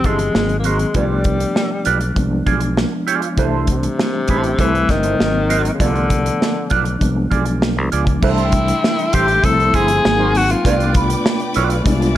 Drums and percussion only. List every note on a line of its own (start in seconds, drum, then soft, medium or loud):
0.04 kick medium
0.04 closed hi-hat soft
0.19 closed hi-hat soft
0.35 snare medium
0.49 closed hi-hat soft
0.64 closed hi-hat medium
0.79 closed hi-hat soft
0.94 kick medium
0.94 closed hi-hat medium
1.24 kick medium
1.24 closed hi-hat medium
1.40 closed hi-hat medium
1.56 snare medium
1.85 closed hi-hat medium
2.01 closed hi-hat soft
2.16 kick medium
2.16 closed hi-hat medium
2.47 kick medium
2.47 closed hi-hat soft
2.60 closed hi-hat medium
2.77 snare loud
3.08 closed hi-hat medium
3.22 closed hi-hat soft
3.37 kick medium
3.37 closed hi-hat medium
3.67 kick medium
3.67 closed hi-hat medium
3.83 closed hi-hat medium
3.99 snare loud
4.28 kick medium
4.28 closed hi-hat medium
4.44 closed hi-hat soft
4.59 kick medium
4.59 closed hi-hat medium
4.75 closed hi-hat soft
4.89 kick medium
4.89 snare soft
4.89 closed hi-hat soft
5.03 closed hi-hat soft
5.20 snare loud
5.50 closed hi-hat medium
5.65 closed hi-hat soft
5.80 kick medium
5.80 closed hi-hat medium
5.96 closed hi-hat soft
6.10 kick medium
6.10 closed hi-hat medium
6.26 closed hi-hat medium
6.42 snare medium
6.70 kick medium
6.70 closed hi-hat medium
6.85 closed hi-hat soft
7.01 kick medium
7.01 closed hi-hat medium
7.32 kick medium
7.32 closed hi-hat medium
7.45 closed hi-hat soft
7.62 snare loud
7.92 closed hi-hat medium
8.07 kick medium
8.07 closed hi-hat soft
8.22 kick medium
8.22 crash medium
8.38 closed hi-hat soft
8.52 kick medium
8.52 closed hi-hat medium
8.68 closed hi-hat medium
8.84 snare medium
8.99 closed hi-hat soft
9.13 kick medium
9.13 closed hi-hat medium
9.28 closed hi-hat soft
9.44 kick medium
9.44 closed hi-hat medium
9.60 closed hi-hat soft
9.74 kick medium
9.74 closed hi-hat medium
9.88 closed hi-hat medium
10.05 snare loud
10.35 open hi-hat medium
10.50 closed hi-hat medium
10.65 kick medium
10.65 closed hi-hat medium
10.80 closed hi-hat soft
10.94 kick medium
10.94 closed hi-hat medium
11.10 closed hi-hat medium
11.26 snare loud
11.40 closed hi-hat soft
11.54 closed hi-hat medium
11.70 closed hi-hat soft
11.86 kick loud
11.86 closed hi-hat medium
12.02 closed hi-hat soft